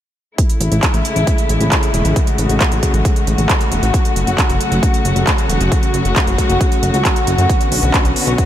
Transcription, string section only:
0.38 3.90 C#3 medium
0.38 3.90 G#3 medium
0.38 7.46 A3 medium
0.38 2.14 E4 medium
2.16 8.46 F#4 medium
3.94 7.46 C#3 medium
3.94 7.46 F#3 medium
7.49 8.46 D3 medium
7.49 8.46 B3 medium
7.49 8.46 C#4 medium

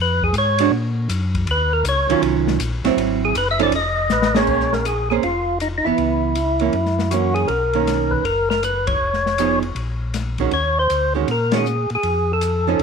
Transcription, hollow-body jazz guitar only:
0.60 0.72 G#3 medium
0.60 0.72 D4 medium
0.60 0.72 F#4 medium
2.10 2.58 D#3 medium
2.10 2.58 F#3 medium
2.10 2.58 C#4 medium
2.10 2.58 F4 medium
2.85 3.32 F#3 medium
2.85 3.33 C4 medium
2.85 3.33 E4 medium
3.59 3.71 F3 medium
3.59 3.71 C#4 medium
3.59 3.72 D#4 medium
3.59 3.72 A4 medium
4.35 4.83 A#3 medium
4.35 4.83 C#4 medium
4.35 4.83 G#4 medium
5.11 5.22 A#3 medium
5.11 5.23 C#4 medium
5.11 5.23 G#4 medium
5.11 5.23 C5 medium
5.86 6.34 E3 medium
5.86 6.34 B3 medium
6.61 6.73 E3 medium
6.61 6.73 A#3 medium
6.61 6.73 C#4 medium
7.11 7.49 E3 soft
7.11 7.50 A#3 medium
7.11 7.50 C#4 medium
7.75 8.23 D#3 medium
7.75 8.23 A#3 medium
7.75 8.23 C#4 medium
9.39 9.61 F3 medium
9.39 9.61 B3 medium
9.39 9.62 D#4 medium
9.39 9.62 G#4 medium
10.40 10.51 D#3 soft
10.40 10.51 G#3 medium
10.40 10.52 C#4 medium
10.40 10.52 F#4 medium
11.15 11.27 D#3 soft
11.15 11.27 G#3 medium
11.15 11.27 C#4 medium
11.15 11.28 F#4 soft
11.52 11.65 D#3 soft
11.52 11.65 G#3 medium
11.52 11.65 C#4 medium
11.52 11.65 F#4 medium
12.67 12.79 F3 medium
12.67 12.79 C#4 medium
12.67 12.80 D#4 medium
12.67 12.80 A4 medium

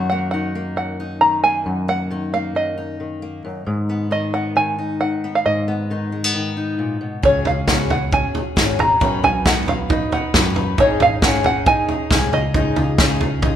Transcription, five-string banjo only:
0.10 0.30 F#5 medium
0.31 0.76 F#5 medium
0.77 1.21 F#5 medium
1.21 1.43 A#5 medium
1.44 1.89 G#5 medium
1.89 2.33 F#5 medium
2.34 2.54 F5 medium
2.56 3.41 D#5 medium
4.12 4.33 D#5 medium
4.34 4.55 F#5 medium
4.57 5.00 G#5 medium
5.01 5.35 F#5 medium
5.35 5.45 F5 medium
5.46 6.75 D#5 medium
7.25 7.47 C#5 medium
7.47 7.68 F5 medium
7.69 7.90 F#5 medium
7.91 8.13 F#5 medium
8.14 8.80 G#5 medium
8.80 9.24 A#5 medium
9.24 9.46 G#5 medium
9.47 9.67 F#5 medium
9.69 10.14 F5 medium
10.13 10.54 F#5 medium
10.80 11.02 C#5 medium
11.02 11.24 F5 medium
11.24 11.45 F#5 medium
11.46 11.67 F#5 medium
11.67 12.29 G#5 loud
12.34 13.56 D#5 medium

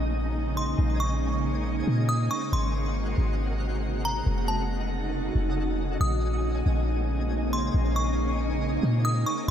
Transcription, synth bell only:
0.57 0.78 C6 medium
1.00 1.62 C#6 medium
2.09 2.30 D#6 medium
2.31 2.51 C#6 medium
2.53 2.94 C6 loud
4.05 4.26 A#5 loud
4.48 5.10 A5 medium
6.01 6.42 D#6 medium
7.53 7.74 C6 medium
7.96 8.57 C#6 medium
9.05 9.25 D#6 medium
9.26 9.47 C#6 medium

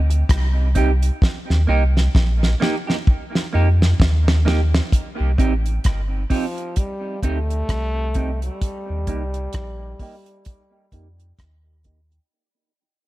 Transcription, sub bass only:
0.00 0.24 D2 medium
0.30 1.10 C2 medium
1.50 1.66 D#2 loud
1.69 2.09 C2 medium
2.16 2.55 A#1 loud
3.55 3.94 F2 loud
4.00 4.80 D#2 loud
5.20 5.36 C2 loud
5.39 5.79 A1 medium
5.86 6.25 G1 medium
7.23 7.63 D2 medium
7.69 8.50 C2 medium
8.90 9.06 D#2 medium
9.08 9.48 C2 medium
9.55 9.95 A#1 medium
10.93 11.33 F2 medium
11.39 12.19 D#2 medium

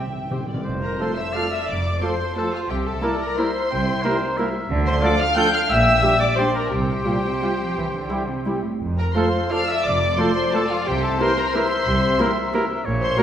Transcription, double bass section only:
0.65 0.94 F1 medium
1.68 1.97 F1 medium
2.69 2.97 C2 medium
3.71 3.98 C2 medium
4.70 4.97 D2 medium
5.70 5.97 A#1 medium
6.72 7.00 C2 medium
7.76 8.04 C2 medium
8.81 9.10 F1 medium
9.85 10.13 F1 medium
10.87 11.15 C2 medium
11.86 12.14 C2 medium
12.85 13.12 A#1 medium

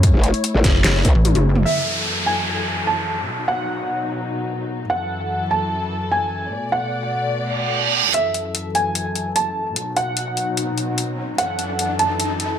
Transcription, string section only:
0.00 1.62 A3 medium
0.00 1.62 E4 medium
0.00 1.64 C#5 medium
1.65 3.26 F#2 medium
1.65 3.26 E3 medium
1.65 3.26 A4 medium
3.28 4.88 B2 medium
3.28 4.88 F#3 medium
3.28 4.88 D#4 medium
4.90 6.50 F#2 medium
4.90 6.50 E3 medium
4.90 6.50 A4 medium
6.52 8.12 B2 medium
6.52 8.12 A3 medium
6.52 8.12 D5 medium
8.14 9.75 F#2 medium
8.14 9.75 E3 medium
8.14 9.75 A4 medium
9.76 11.37 B2 medium
9.76 11.37 F#3 medium
9.76 11.37 D#4 medium
11.38 12.59 F#2 medium
11.38 12.59 E3 medium
11.38 12.59 A4 medium

